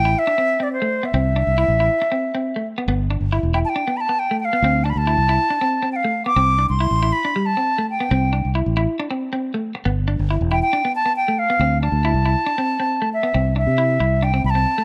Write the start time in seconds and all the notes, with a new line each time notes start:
Already playing: A1 G5
0.05 E4
0.19 E5
0.27 D4
0.38 C4
0.60 C4 D5
0.73 C5
0.82 A3
1.03 B3 E5
1.14 C2 C4
1.36 D4
1.47 C2
1.58 E4
1.68 A1
1.80 E4
2.02 muted clean electric guitar stroke
2.12 C4
2.35 C4
2.56 A3
2.78 B3
2.88 G1 B3
3.10 D4
3.21 G1
3.32 E4
3.43 E1
3.54 E4 G5
3.65 A5
3.69 G5
3.76 D4
3.88 B3
3.97 A5 B5
4.09 B3
4.19 G5
4.31 A3
4.40 G5
4.45 F5
4.53 B3
4.62 D2 C4
4.84 D4 A5
4.90 B5
4.96 D2 A5
5.07 E4
5.17 C2
5.29 E4
5.50 D4
5.61 C4
5.83 C4
5.92 F5 G5
6.05 A3
6.26 B3 D6
6.36 C2 C4
6.59 D4
6.69 C2 C6
6.80 E4
6.91 A1
7.03 E4
7.13 B5
7.25 D4
7.36 G3
7.46 A5
7.57 C4
7.78 A3
7.90 G5
8.00 B3
8.11 C2 C4
8.33 D4
8.45 C2
8.55 E4
8.66 A1
8.77 E4
9.00 D4
9.11 C4
9.33 C4
9.54 A3
9.75 muted clean electric guitar stroke
9.85 G1 B3
10.08 D4
10.19 G1
10.30 E4
10.41 E1
10.51 E4 G5
10.62 G5
10.73 D4
10.85 B3
10.96 A5
11.06 B3
11.16 G5
11.28 A3
11.39 F5
11.50 B3
11.59 D2 C4
11.82 D4 A5
11.92 D2
12.05 E4
12.14 C2
12.26 E4
12.46 D4
12.58 C4
12.80 C4
13.02 A3
13.14 E5
13.23 B3
13.34 C2 C4
13.56 D4 E5
13.67 C3
13.78 E4
14.00 C2 E4
14.22 D4 G5
14.34 C4
14.44 C2 B5
14.50 A5
14.55 C4
14.78 A3